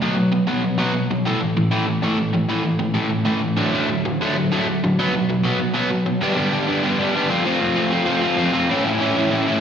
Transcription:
0.02 0.16 B2 medium
0.02 0.16 F#3 medium
0.02 0.17 B3 medium
0.17 0.31 B2 medium
0.17 0.31 F#3 medium
0.32 0.46 B2 medium
0.32 0.46 F#3 medium
0.47 0.62 B2 medium
0.47 0.62 F#3 medium
0.47 0.63 B3 medium
0.64 0.77 B2 medium
0.64 0.77 F#3 medium
0.78 0.92 B2 medium
0.78 0.93 F#3 loud
0.78 0.93 B3 medium
0.93 1.08 B2 medium
0.93 1.08 F#3 medium
1.11 1.24 B2 medium
1.11 1.24 F#3 medium
1.25 1.39 A2 medium
1.25 1.40 E3 medium
1.25 1.40 A3 loud
1.40 1.54 A2 medium
1.40 1.54 E3 medium
1.57 1.70 A2 medium
1.57 1.70 E3 medium
1.71 1.86 A2 medium
1.71 1.86 E3 medium
1.71 1.86 A3 medium
1.87 2.01 A2 medium
1.87 2.01 E3 medium
2.02 2.16 A2 medium
2.02 2.17 E3 medium
2.02 2.18 A3 loud
2.17 2.31 A2 medium
2.17 2.32 E3 medium
2.33 2.47 A2 medium
2.33 2.47 E3 medium
2.49 2.62 A2 medium
2.49 2.63 E3 medium
2.49 2.64 A3 medium
2.64 2.78 A2 medium
2.64 2.78 E3 medium
2.79 2.93 A2 medium
2.79 2.93 E3 medium
2.94 3.09 A2 medium
2.94 3.09 E3 medium
2.94 3.10 A3 medium
3.10 3.24 A2 medium
3.10 3.25 E3 medium
3.25 3.40 A2 medium
3.25 3.41 E3 medium
3.25 3.41 A3 loud
3.42 3.56 A2 medium
3.42 3.56 E3 medium
3.57 3.72 D3 medium
3.57 3.72 F#3 loud
3.57 3.72 A3 medium
3.73 3.88 D3 medium
3.73 3.88 F#3 medium
3.73 3.89 A3 medium
3.89 4.03 D3 medium
3.89 4.03 F#3 medium
4.05 4.19 D3 medium
4.05 4.19 F#3 medium
4.21 4.35 D3 medium
4.21 4.35 F#3 medium
4.21 4.35 A3 medium
4.37 4.50 D3 medium
4.37 4.50 F#3 medium
4.52 4.66 D3 medium
4.52 4.66 F#3 loud
4.52 4.66 A3 loud
4.68 4.81 D3 medium
4.68 4.81 F#3 medium
4.84 4.97 D3 medium
4.84 4.97 F#3 medium
4.99 5.12 B2 medium
4.99 5.13 F#3 medium
4.99 5.13 B3 medium
5.14 5.27 B2 medium
5.14 5.28 F#3 medium
5.29 5.42 B2 medium
5.29 5.43 F#3 medium
5.43 5.58 B2 medium
5.43 5.58 F#3 medium
5.43 5.59 B3 medium
5.59 5.73 B2 medium
5.59 5.73 F#3 medium
5.74 5.89 B2 medium
5.74 5.90 F#3 medium
5.74 5.90 B3 loud
5.91 6.05 B2 medium
5.91 6.05 F#3 medium
6.06 6.20 B2 medium
6.06 6.20 F#3 medium
6.21 6.38 G2 medium
6.21 6.37 D3 medium
6.21 6.36 G3 loud
6.21 6.36 B3 loud
6.21 6.35 D4 loud
6.36 6.50 G2 medium
6.36 6.52 D3 medium
6.36 6.52 G3 medium
6.36 6.52 B3 medium
6.36 6.53 D4 medium
6.51 6.68 G2 loud
6.51 6.68 D3 loud
6.51 6.67 G3 loud
6.51 6.66 B3 loud
6.51 6.66 D4 loud
6.67 6.81 G2 medium
6.67 6.82 D3 medium
6.67 6.83 G3 medium
6.67 6.83 B3 medium
6.67 6.84 D4 loud
6.82 7.00 G2 loud
6.82 7.00 D3 medium
6.82 6.99 G3 loud
6.82 6.99 B3 loud
6.82 6.98 D4 loud
6.99 7.13 G2 medium
6.99 7.13 D3 medium
6.99 7.14 G3 medium
6.99 7.15 B3 loud
6.99 7.15 D4 medium
7.14 7.29 G2 medium
7.14 7.29 D3 medium
7.14 7.29 G3 medium
7.14 7.30 B3 loud
7.14 7.30 D4 loud
7.29 7.46 F3 medium
7.29 7.46 A3 loud
7.29 7.44 C4 loud
7.29 7.44 F4 loud
7.45 7.58 F3 medium
7.45 7.61 A3 medium
7.45 7.60 C4 loud
7.45 7.61 F4 loud
7.59 7.77 F3 medium
7.59 7.77 A3 medium
7.59 7.75 C4 medium
7.59 7.75 F4 medium
7.76 7.90 F3 loud
7.76 7.92 A3 loud
7.76 7.91 C4 loud
7.76 7.92 F4 loud
7.91 8.07 F3 medium
7.91 8.07 A3 medium
7.91 8.06 C4 loud
7.91 8.05 F4 loud
8.06 8.20 F3 medium
8.06 8.22 A3 loud
8.06 8.21 C4 loud
8.06 8.22 F4 loud
8.21 8.38 F3 medium
8.21 8.39 A3 loud
8.21 8.37 C4 loud
8.21 8.37 F4 loud
8.38 8.51 F3 medium
8.38 8.53 A3 medium
8.38 8.53 C4 loud
8.38 8.54 F4 loud
8.53 8.68 F3 medium
8.53 8.70 A3 loud
8.53 8.68 C4 loud
8.53 8.69 F4 loud
8.69 8.85 A2 medium
8.69 8.84 E3 loud
8.69 8.85 A3 loud
8.69 8.83 C#4 loud
8.69 8.83 E4 loud
8.84 8.98 A2 medium
8.84 8.99 E3 medium
8.84 9.00 A3 medium
8.84 9.00 C#4 medium
8.84 9.00 E4 loud
8.99 9.17 A2 loud
8.99 9.17 E3 loud
8.99 9.16 A3 loud
8.99 9.15 C#4 loud
8.99 9.14 E4 loud
9.16 9.30 A2 medium
9.16 9.31 E3 medium
9.16 9.31 A3 medium
9.16 9.32 C#4 loud
9.16 9.32 E4 loud
9.31 9.48 A2 loud
9.31 9.48 E3 loud
9.31 9.48 A3 loud
9.31 9.47 C#4 loud
9.31 9.46 E4 loud
9.47 9.60 A2 medium
9.47 9.60 E3 medium
9.47 9.60 A3 medium
9.47 9.60 C#4 loud
9.47 9.60 E4 loud

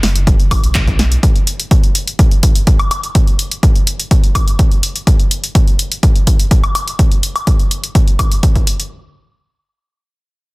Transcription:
0.03 0.57 F#1 medium
0.03 snare medium
0.03 open hi-hat medium
0.16 closed hi-hat soft
0.27 kick loud
0.27 closed hi-hat soft
0.40 closed hi-hat soft
0.51 kick medium
0.51 open hi-hat loud
0.51 high woodblock medium
0.64 1.17 B1 medium
0.64 closed hi-hat soft
0.75 kick loud
0.75 clap loud
0.75 closed hi-hat soft
0.87 kick medium
0.87 closed hi-hat soft
0.99 snare medium
0.99 open hi-hat medium
1.12 closed hi-hat soft
1.23 kick loud
1.23 closed hi-hat soft
1.36 closed hi-hat soft
1.47 closed hi-hat medium
1.60 closed hi-hat soft
1.71 kick loud
1.71 closed hi-hat soft
1.84 closed hi-hat soft
1.95 closed hi-hat medium
2.08 closed hi-hat soft
2.19 kick loud
2.19 closed hi-hat soft
2.31 closed hi-hat soft
2.43 kick medium
2.43 closed hi-hat medium
2.55 closed hi-hat soft
2.67 kick loud
2.67 closed hi-hat soft
2.79 closed hi-hat soft
2.79 high woodblock medium
2.91 closed hi-hat medium
2.91 high woodblock medium
3.03 closed hi-hat soft
3.15 kick loud
3.15 closed hi-hat soft
3.27 closed hi-hat soft
3.39 closed hi-hat medium
3.51 closed hi-hat soft
3.63 kick loud
3.63 closed hi-hat soft
3.76 closed hi-hat soft
3.87 closed hi-hat medium
4.00 closed hi-hat soft
4.11 kick loud
4.11 closed hi-hat soft
4.24 closed hi-hat soft
4.35 kick medium
4.35 closed hi-hat medium
4.35 high woodblock medium
4.48 closed hi-hat soft
4.59 kick loud
4.59 closed hi-hat soft
4.72 closed hi-hat soft
4.83 closed hi-hat medium
4.96 closed hi-hat soft
5.07 kick loud
5.07 closed hi-hat medium
5.20 closed hi-hat soft
5.31 closed hi-hat medium
5.44 closed hi-hat soft
5.55 kick loud
5.55 closed hi-hat medium
5.68 closed hi-hat soft
5.79 closed hi-hat medium
5.92 closed hi-hat soft
6.03 kick loud
6.03 closed hi-hat soft
6.16 closed hi-hat soft
6.27 kick medium
6.27 closed hi-hat medium
6.40 closed hi-hat soft
6.51 kick loud
6.51 closed hi-hat medium
6.64 closed hi-hat soft
6.64 high woodblock medium
6.75 closed hi-hat medium
6.75 high woodblock medium
6.88 closed hi-hat soft
6.99 kick loud
6.99 closed hi-hat medium
7.12 closed hi-hat soft
7.23 closed hi-hat medium
7.36 closed hi-hat soft
7.36 high woodblock medium
7.47 kick loud
7.47 closed hi-hat medium
7.60 closed hi-hat soft
7.71 closed hi-hat medium
7.84 closed hi-hat soft
7.95 kick loud
7.95 closed hi-hat soft
8.08 closed hi-hat soft
8.19 kick medium
8.19 closed hi-hat medium
8.19 high woodblock medium
8.32 closed hi-hat medium
8.43 kick loud
8.43 closed hi-hat medium
8.56 kick medium
8.56 closed hi-hat soft
8.67 closed hi-hat medium
8.80 closed hi-hat soft

